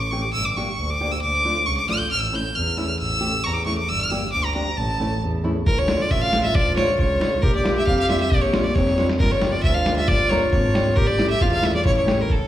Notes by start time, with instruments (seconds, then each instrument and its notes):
Already playing: double bass A1
0.00 violin D6
0.11 nylon-string guitar A3 C#4 G4, violin C#6
0.22 violin D6
0.33 double bass G1, violin E6
0.45 violin D6
0.56 nylon-string guitar A#3 D4 G4, violin C#6
0.78 double bass D2
0.90 violin D6
1.01 nylon-string guitar A#3 D4 G4
1.12 violin E6
1.21 double bass D2, violin D6
1.45 nylon-string guitar A3 D4 F4
1.66 double bass C#2, violin C#6
1.77 violin D6
1.88 double bass A1, nylon-string guitar A3 D4 F4, violin F6
1.99 violin G6
2.11 double bass A1, violin F6
2.20 violin E6
2.33 nylon-string guitar A3 C#4 E4, violin G6
2.55 double bass E2, violin F6
2.77 nylon-string guitar A3 C#4 E4, violin E6
2.88 violin F6
2.99 double bass A1, violin E6
3.20 nylon-string guitar A3 C#4 G4
3.44 double bass E2, violin A#5 C#6
3.49 violin C#6
3.54 violin D6
3.66 nylon-string guitar A3 C#4 E4, violin C#6
3.78 violin D6
3.89 double bass G1, violin E6
4.00 violin F6
4.10 nylon-string guitar A#3 D4 G4, violin E6
4.32 double bass D2, violin D6
4.45 violin A#5
4.54 nylon-string guitar A#3 D4 G4, violin A#5
4.77 double bass A1, violin A5
5.00 nylon-string guitar A3 C#4 E4
5.22 double bass E2
5.44 nylon-string guitar A3 C#4 E4
5.65 double bass D2, clarinet F4, violin A#4, kick
5.79 violin C#5
5.88 nylon-string guitar A3 D4 F4, snare
6.02 violin D5
6.11 double bass A1, violin E5, kick
6.22 violin F5
6.33 nylon-string guitar A3 D4 F4, snare
6.43 violin E5
6.55 double bass D2, violin D5, kick
6.76 nylon-string guitar A3 D4 F4, violin C#5, snare
6.99 double bass C#2, violin C#5, kick
7.19 nylon-string guitar A3 D4 F4, snare
7.42 double bass A#1, clarinet G4, violin A#4, kick
7.55 violin D5
7.64 nylon-string guitar A#3 D4 F4, snare
7.78 violin E5
7.87 double bass F2, violin F5, kick
7.99 violin F5
8.09 nylon-string guitar A#3 D4 F4, violin E5, snare
8.20 violin E5
8.30 double bass A#1, violin D5, kick
8.41 violin C#5
8.53 nylon-string guitar A#3 D4 F4, snare
8.63 violin D5
8.75 double bass F2, violin C#5, kick, snare
8.87 snare
8.98 nylon-string guitar A#3 D4 F4, snare
9.09 snare
9.19 double bass G1, clarinet F4, violin A#4, kick, splash
9.31 violin C#5
9.41 nylon-string guitar A#3 D4 G4, snare
9.52 violin D5
9.63 double bass D2, violin E5, kick
9.74 violin F5
9.86 nylon-string guitar A#3 D4 G4, snare
9.96 violin E5
10.08 double bass G1, violin D5, kick
10.29 nylon-string guitar A#3 D4 A#4, violin C#5, snare
10.51 double bass G#1, violin C#5, kick
10.74 nylon-string guitar A#3 D4 G4, snare
10.96 double bass A1, clarinet G4, violin A#4, kick
11.07 violin D5
11.18 nylon-string guitar A3 C#4 E4, snare
11.30 violin E5
11.41 double bass E2, clarinet F4, violin F5, kick
11.52 violin F5
11.61 nylon-string guitar A3 C#4 E4, violin E5, snare
11.75 violin D5, snare
11.85 double bass A1, clarinet E4, violin C#5, kick
11.97 violin C#5
12.06 nylon-string guitar A3 C#4 G4, snare
12.21 violin A#4
12.30 double bass C#2, violin A4, kick